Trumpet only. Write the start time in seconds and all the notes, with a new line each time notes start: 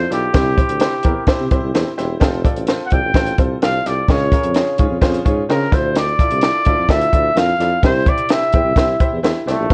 Already playing: C5
0.13 G4
2.86 F#5
2.92 G5
3.63 F5
3.87 D5
4.11 C#5
5.50 A#4
5.74 C5
5.98 D5
6.90 E5
7.38 F5
7.85 C5
8.09 D5
8.32 E5
9.47 A3